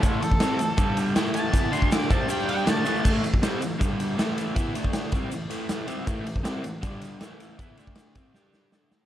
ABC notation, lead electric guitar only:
X:1
M:4/4
L:1/8
Q:1/4=159
K:Glyd
V:1 name="Lead electric guitar"
[CA] A4 z2 a- | a =c' d' a g g a2 | z8 | z8 |
z8 | z8 |]